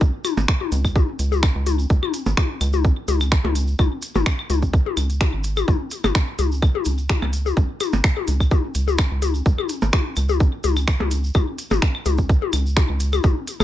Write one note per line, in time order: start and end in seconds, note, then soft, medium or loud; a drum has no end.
0.01 0.11 C#2 medium
0.01 kick loud
0.01 shaker soft
0.24 closed hi-hat medium
0.24 high tom soft
0.24 claves medium
0.24 shaker medium
0.37 0.46 G#1 medium
0.37 percussion blips medium
0.37 shaker soft
0.48 finger snap medium
0.48 kick loud
0.48 shaker soft
0.61 high tom soft
0.72 1.04 C#2 loud
0.72 closed hi-hat medium
0.72 shaker medium
0.85 kick medium
0.85 claves medium
0.85 shaker medium
0.96 kick loud
0.96 high tom soft
0.96 shaker soft
1.19 1.51 C#2 medium
1.19 closed hi-hat medium
1.19 shaker medium
1.32 high tom soft
1.32 shaker medium
1.43 finger snap medium
1.43 kick loud
1.43 claves medium
1.43 shaker soft
1.55 1.86 C#2 loud
1.66 closed hi-hat medium
1.66 high tom soft
1.66 shaker medium
1.79 shaker soft
1.90 2.00 C#2 medium
1.90 kick loud
1.90 shaker soft
2.03 high tom soft
2.03 claves medium
2.14 closed hi-hat medium
2.14 shaker medium
2.26 2.35 G#1 medium
2.26 percussion blips medium
2.26 shaker medium
2.37 finger snap medium
2.37 kick loud
2.37 high tom soft
2.37 shaker soft
2.61 2.93 C#2 loud
2.61 closed hi-hat medium
2.61 claves medium
2.61 shaker medium
2.73 high tom soft
2.73 shaker medium
2.84 kick loud
2.84 shaker soft
3.08 3.40 C#2 medium
3.08 closed hi-hat medium
3.08 high tom soft
3.08 shaker medium
3.20 claves medium
3.20 shaker soft
3.31 finger snap medium
3.31 kick loud
3.31 shaker soft
3.44 3.75 C#2 loud
3.44 high tom soft
3.44 percussion blips medium
3.55 closed hi-hat medium
3.55 shaker medium
3.67 shaker soft
3.79 3.89 C#2 medium
3.79 kick loud
3.79 high tom soft
3.79 claves medium
3.79 shaker soft
4.02 closed hi-hat medium
4.02 shaker medium
4.15 4.24 G#1 medium
4.15 high tom soft
4.15 percussion blips medium
4.15 shaker soft
4.26 finger snap medium
4.26 kick loud
4.26 shaker soft
4.39 claves medium
4.50 4.82 C#2 loud
4.50 closed hi-hat medium
4.50 high tom soft
4.50 shaker medium
4.62 kick medium
4.62 shaker soft
4.73 kick loud
4.73 shaker soft
4.86 high tom soft
4.97 5.29 C#2 medium
4.97 closed hi-hat medium
4.97 claves medium
4.97 shaker medium
5.10 closed hi-hat soft
5.10 shaker medium
5.20 finger snap medium
5.20 kick loud
5.20 closed hi-hat soft
5.20 high tom soft
5.20 shaker soft
5.33 5.64 G#1 medium
5.44 closed hi-hat medium
5.44 shaker medium
5.56 high tom soft
5.56 claves medium
5.56 shaker medium
5.68 5.78 C#2 loud
5.68 kick loud
5.68 high tom soft
5.68 shaker soft
5.91 closed hi-hat medium
5.91 shaker medium
6.04 6.13 G#1 medium
6.04 high tom soft
6.04 percussion blips medium
6.04 claves medium
6.04 shaker medium
6.15 finger snap medium
6.15 kick loud
6.15 shaker soft
6.39 6.70 C#2 loud
6.39 closed hi-hat medium
6.39 high tom soft
6.39 shaker medium
6.52 shaker medium
6.62 kick loud
6.62 claves medium
6.62 shaker soft
6.75 high tom soft
6.85 7.18 C#2 medium
6.85 closed hi-hat loud
6.85 shaker medium
6.98 shaker medium
7.09 finger snap medium
7.09 kick loud
7.09 high tom soft
7.09 shaker soft
7.22 7.53 C#2 loud
7.22 percussion blips medium
7.22 claves medium
7.33 closed hi-hat medium
7.33 shaker medium
7.46 high tom soft
7.46 shaker medium
7.57 7.67 C#2 loud
7.57 kick loud
7.57 shaker soft
7.80 closed hi-hat loud
7.80 high tom soft
7.80 claves medium
7.80 shaker medium
7.93 8.02 G#1 medium
7.93 percussion blips medium
7.93 shaker medium
8.04 finger snap medium
8.04 kick loud
8.04 shaker soft
8.17 high tom soft
8.27 8.60 C#2 loud
8.27 closed hi-hat medium
8.27 shaker medium
8.40 kick medium
8.40 claves medium
8.40 shaker medium
8.51 kick loud
8.51 high tom soft
8.51 shaker soft
8.75 9.07 C#2 medium
8.75 closed hi-hat loud
8.75 shaker medium
8.88 high tom soft
8.88 shaker medium
8.98 finger snap medium
8.98 kick loud
8.98 claves medium
8.98 shaker soft
9.11 9.42 C#2 loud
9.22 closed hi-hat loud
9.22 high tom soft
9.22 shaker loud
9.35 shaker medium
9.46 9.56 C#2 loud
9.46 kick loud
9.46 shaker soft
9.58 high tom soft
9.58 claves medium
9.69 closed hi-hat loud
9.69 shaker medium
9.82 9.91 G#1 medium
9.82 percussion blips medium
9.82 shaker medium
9.92 finger snap medium
9.92 kick loud
9.92 high tom soft
9.92 shaker soft
10.16 10.48 C#2 loud
10.16 closed hi-hat loud
10.16 claves medium
10.16 shaker medium
10.29 high tom soft
10.29 shaker medium
10.40 kick loud
10.40 shaker soft
10.64 10.96 C#2 medium
10.64 closed hi-hat loud
10.64 high tom soft
10.64 shaker medium
10.76 claves medium
10.76 shaker medium
10.87 finger snap medium
10.87 kick loud
10.87 shaker soft
11.00 11.31 C#2 loud
11.00 high tom soft
11.00 percussion blips medium
11.11 closed hi-hat loud
11.11 shaker loud
11.24 shaker medium
11.34 11.45 C#2 medium
11.34 kick loud
11.34 high tom soft
11.34 claves medium
11.34 shaker soft
11.58 closed hi-hat loud
11.58 shaker medium
11.71 11.80 G#1 medium
11.71 high tom soft
11.71 percussion blips medium
11.71 shaker medium
11.82 finger snap medium
11.82 kick loud
11.95 claves medium
12.05 12.37 C#2 loud
12.05 closed hi-hat medium
12.05 high tom soft
12.05 shaker medium
12.18 kick medium
12.18 shaker medium
12.29 kick loud
12.29 shaker soft
12.42 high tom soft
12.53 12.85 C#2 medium
12.53 closed hi-hat loud
12.53 claves medium
12.53 shaker medium
12.66 shaker medium
12.77 finger snap medium
12.77 kick loud
12.77 closed hi-hat soft
12.77 high tom soft
12.77 shaker soft
12.89 13.20 C#2 loud
13.00 closed hi-hat loud
13.00 shaker medium
13.13 high tom soft
13.13 claves medium
13.13 shaker medium
13.24 13.34 C#2 medium
13.24 kick loud
13.24 high tom soft
13.24 shaker soft
13.47 closed hi-hat medium
13.47 shaker medium
13.60 13.64 G#1 medium
13.60 high tom soft
13.60 percussion blips medium
13.60 claves medium
13.60 shaker medium